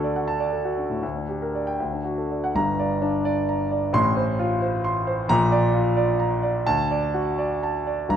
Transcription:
grand piano
Already playing: D2 D4 F#4 A4
0.04 D5
0.16 F#5
0.28 A5
0.40 D5
0.52 A4
0.65 F#4
0.77 D4
0.90 A2
1.03 D2
1.16 D4
1.29 G4
1.42 A#4
1.55 D5
1.67 G5
1.80 D2
1.93 D4
2.05 F#4
2.18 A4
2.31 D5
2.44 F#5
2.55 G1 G2 A#5
2.79 D5
3.02 D4
3.25 D5
3.49 A#5
3.72 D5
3.93 A1 A2 C6
4.17 C5
4.39 F4
4.62 C5
4.84 C6
5.07 C5
5.28 A#1 A#2 A#5
5.52 D5
5.74 F4
5.97 D5
6.20 A#5
6.43 D5
6.66 D2 A5
6.91 D5
7.14 F#4
7.38 D5
7.63 A5
7.87 D5
8.09 G1 G2 A#5

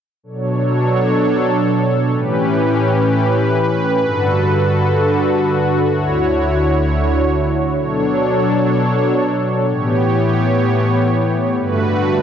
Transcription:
analog synth pad
0.23 B2 F#3 D4 A4 C#5
2.13 A2 E3 C#4 G4 B4
4.01 G2 D3 F#4 A4
5.90 D2 D3 E4 C#5
7.79 B2 F#3 D4 A4 C#5
9.68 A2 E3 B3 G4 C#5
11.58 G2 D3 A3 F#4 B4

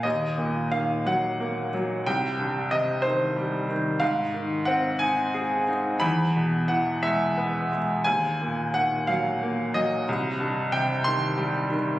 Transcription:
grand piano
0.03 D#2 D#5
0.38 A#2
0.72 D#3 F5
1.06 F#3 F#5
1.40 A#3
1.74 F#3
2.06 C2 G5
2.39 G2
2.71 C3 D#5
3.02 D#3 C5
3.37 G3
3.69 D#3
4.00 G#2 F5
4.34 D#3
4.65 C4 F#5
4.99 D#4 G#5
5.34 G#4
5.68 D#4
6.00 E2 B5
6.36 B2
6.68 E3 F#5
7.03 G#3 E5
7.37 B3
7.72 G#3
8.04 D#2 G#5
8.41 A#2
8.74 D#3 F#5
9.07 F#3 F5
9.43 A#3
9.74 F#3 D#5
10.09 C2
10.40 G2
10.72 C3 G5
11.04 D#3 C6
11.38 G3
11.71 D#3

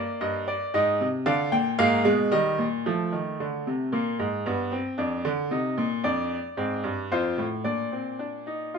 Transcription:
grand piano
Already playing: A#3 D5
0.21 G2 D#5
0.48 D5
0.74 G#2 D#4 D#5
1.01 C3
1.26 D3 D4 F5
1.52 A#2 G5
1.79 G#2 A#3 F5
2.05 B2 G#3
2.31 D#3 G3 D#5
2.59 A#2
2.86 F3 A3
3.12 D#3
3.40 D3
3.67 C3
3.92 A#2 A#3
4.19 G#2
4.46 G2 B3
4.72 C4
4.98 F2 D4
5.25 D3
5.51 C3 D#4
5.78 A#2
6.04 F2 D4 D5
6.57 G#2 C4
6.84 G2
7.12 F2 F4 C5
7.38 A2
7.64 A#2 D4 D5
7.92 C4
8.19 D4
8.47 D#4
8.74 F4

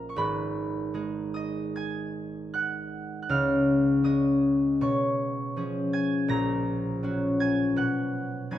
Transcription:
harp
Already playing: A#1 A#2 A#3 C#4 F#4 A#4 D#5 F5 F#5 A#5 F#6 A#6
0.09 C#6
0.16 G#1 G#2 B4 B5
0.94 G#3 D#4 G#4
1.34 D#5 D#6
1.76 G#5 G#6
2.54 F#5 F#6
3.22 F#6
3.29 C#2 C#3 F5 F6
4.04 G#3 C#4 G#4 D#5 D#6
4.81 B2 C#5 C#6
5.56 F3 C#4 G#4
5.93 G#5 G#6
6.28 A#1 A#2 A#5 A#6
7.03 F#3 C#4 F#4
7.40 G#5 G#6
7.76 B2 F#5 F#6
8.51 F#3 B3 D#4 G#5 G#6

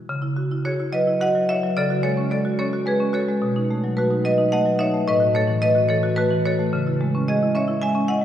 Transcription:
marimba
0.09 C#3
0.22 E4
0.36 F#4
0.51 E4
0.65 F#4 G#4 C#5
0.80 E4
0.92 F#3 B4 D#5
1.07 E4
1.21 F#4 D#5 F#5
1.35 F#3
1.49 E4 C#5 E5
1.63 F#3
1.77 C#3 A4 D5
1.90 F#4
2.03 G#3 A4 C#5
2.17 C#4
2.31 G#3 A4 D5
2.45 F#4
2.59 C#4 A4 C#5
2.73 F#4
2.86 G#3 G#4 B4
3.00 C#4
3.13 F#4 A4 C#5
3.29 G#3
3.42 B2
3.56 D#4
3.71 A3
3.84 F#3
3.97 A3 F#4 B4
4.10 D#4
4.25 F#3 B4 D#5
4.38 D#4
4.52 A3 D#5 F#5
4.66 F#3
4.79 D#4 C#5 E5
4.94 A3
5.08 A2 B4 D#5
5.20 F#4
5.35 A3 A4 C#5
5.47 E3
5.62 A3 B4 D#5
5.75 F#4
5.89 E3 A4 C#5
6.03 F#4
6.16 A3 F#4 B4
6.31 E3
6.46 F#4 A4 C#5
6.59 A3
6.73 C#3
6.87 E4
7.01 G#3
7.15 C#4
7.28 G#3 G#4 D#5
7.43 E4
7.55 C#4 C#5 E5
7.68 E4
7.82 G#3 E5 G#5
7.95 C#4
8.08 E4 D#5 F#5
8.21 G#3

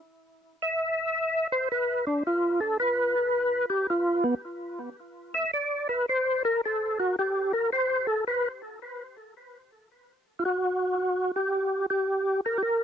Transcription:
tonewheel organ
0.62 E5
1.52 C5
1.72 B4
2.07 D4
2.27 F4
2.61 A4
2.80 B4
3.70 G4
3.90 F4
4.24 B3
5.34 E5
5.53 D5
5.89 B4
6.09 C5
6.45 A#4
6.65 A4
6.99 F#4
7.19 G4
7.53 A#4
7.72 C5
8.07 A4
8.27 B4
10.39 F4
10.45 F#4
11.36 G4
11.90 G4
12.46 A#4
12.58 G4
12.63 A#4

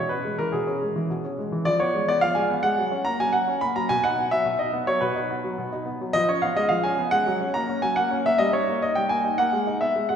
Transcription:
grand piano
Already playing: B2
0.09 C#4 B4
0.25 G#3
0.38 E3 A#4
0.52 B2 G#4
0.67 C#4
0.82 G#3
0.96 E3
1.10 B2
1.24 C#4
1.38 G#3
1.52 E3
1.65 F3 D5
1.80 B3 C#5
1.94 G#3
2.08 B3 D5
2.21 F3 F5
2.35 G#3 G#5
2.50 B3
2.63 G#3 F#5
2.78 F#3
2.92 C#4
3.05 A#3 A#5
3.20 F#3 G#5
3.33 F#3 F#5
3.48 C#4
3.61 A#3 B5
3.76 F#3 A#5
3.89 B2 G#5
4.04 D#4 F#5
4.18 B3
4.31 F#3 E5
4.45 B2
4.59 D#4 D#5
4.73 B3
4.87 F#3 C#5
5.01 B2 B4
5.16 D#4
5.30 B3
5.44 F#3
5.58 B2
5.72 D#4
5.86 B3
6.01 F#3
6.13 F3 D#5
6.29 C#4 C#5
6.42 B3 F5
6.56 G#3 D#5
6.69 F3 F5
6.84 C#4 G#5
6.98 B3
7.11 G#3 F#5
7.26 F#3
7.41 C#4
7.54 A#3 A#5
7.69 C#4
7.82 F#3 G#5
7.96 A#3 F#5
8.11 C#4
8.26 A#3 E5
8.38 G3 D#5
8.53 D#4 C#5
8.69 A#3
8.82 D#4 D#5
8.95 G3 G5
9.09 A#3 G#5
9.24 D#4
9.38 A#3 F#5
9.53 G#3
9.67 D#4
9.81 B3 E5
9.96 G#3
10.09 G#3 F#5

